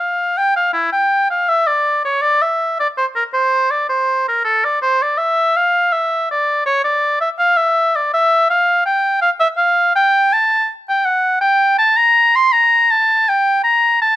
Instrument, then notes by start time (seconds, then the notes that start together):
oboe
0.00 F5
0.38 G5
0.56 F5
0.73 E4
0.92 G5
1.31 F5
1.49 E5
1.67 D5
2.05 C#5
2.22 D5
2.42 E5
2.80 D5
2.97 C5
3.16 A#4
3.34 C5
3.71 D5
3.89 C5
4.28 A#4
4.45 A4
4.64 D5
4.82 C5
5.02 D5
5.18 E5
5.56 F5
5.92 E5
6.31 D5
6.66 C#5
6.84 D5
7.21 E5
7.39 F5
7.57 E5
7.96 D5
8.14 E5
8.50 F5
8.86 G5
9.22 F5
9.40 E5
9.57 F5
9.96 G5
10.33 A5
10.89 G5
11.06 F#5
11.41 G5
11.79 A5
11.97 A#5
12.36 C6
12.53 A#5
12.91 A5
13.29 G5
13.64 A#5
14.02 A5